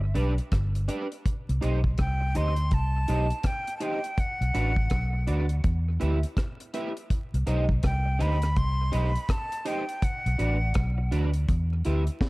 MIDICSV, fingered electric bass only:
0, 0, Header, 1, 2, 480
1, 0, Start_track
1, 0, Tempo, 730816
1, 825, Time_signature, 4, 2, 24, 8
1, 8075, End_track
2, 0, Start_track
2, 0, Title_t, "Fingered electric bass"
2, 0, Program_c, 0, 33
2, 0, Note_on_c, 0, 31, 95
2, 97, Note_off_c, 0, 31, 0
2, 108, Note_on_c, 0, 35, 87
2, 248, Note_off_c, 0, 35, 0
2, 344, Note_on_c, 0, 31, 100
2, 574, Note_off_c, 0, 31, 0
2, 979, Note_on_c, 0, 36, 103
2, 1064, Note_off_c, 0, 36, 0
2, 1075, Note_on_c, 0, 35, 92
2, 1300, Note_off_c, 0, 35, 0
2, 1309, Note_on_c, 0, 36, 91
2, 1537, Note_off_c, 0, 36, 0
2, 1553, Note_on_c, 0, 38, 87
2, 1779, Note_off_c, 0, 38, 0
2, 1789, Note_on_c, 0, 36, 106
2, 2017, Note_off_c, 0, 36, 0
2, 2031, Note_on_c, 0, 35, 89
2, 2170, Note_off_c, 0, 35, 0
2, 2896, Note_on_c, 0, 35, 103
2, 2983, Note_off_c, 0, 35, 0
2, 2989, Note_on_c, 0, 33, 86
2, 3217, Note_off_c, 0, 33, 0
2, 3229, Note_on_c, 0, 35, 98
2, 3457, Note_off_c, 0, 35, 0
2, 3474, Note_on_c, 0, 38, 84
2, 3699, Note_off_c, 0, 38, 0
2, 3709, Note_on_c, 0, 40, 95
2, 3937, Note_off_c, 0, 40, 0
2, 3955, Note_on_c, 0, 38, 97
2, 4092, Note_off_c, 0, 38, 0
2, 4820, Note_on_c, 0, 36, 100
2, 4904, Note_off_c, 0, 36, 0
2, 4909, Note_on_c, 0, 35, 92
2, 5137, Note_off_c, 0, 35, 0
2, 5151, Note_on_c, 0, 36, 95
2, 5377, Note_off_c, 0, 36, 0
2, 5393, Note_on_c, 0, 38, 83
2, 5619, Note_off_c, 0, 38, 0
2, 5629, Note_on_c, 0, 36, 96
2, 5857, Note_off_c, 0, 36, 0
2, 5874, Note_on_c, 0, 35, 94
2, 6011, Note_off_c, 0, 35, 0
2, 6738, Note_on_c, 0, 35, 89
2, 6823, Note_off_c, 0, 35, 0
2, 6829, Note_on_c, 0, 33, 91
2, 7056, Note_off_c, 0, 33, 0
2, 7067, Note_on_c, 0, 35, 104
2, 7296, Note_off_c, 0, 35, 0
2, 7310, Note_on_c, 0, 38, 83
2, 7537, Note_off_c, 0, 38, 0
2, 7549, Note_on_c, 0, 40, 104
2, 7777, Note_off_c, 0, 40, 0
2, 7792, Note_on_c, 0, 38, 93
2, 7930, Note_off_c, 0, 38, 0
2, 8075, End_track
0, 0, End_of_file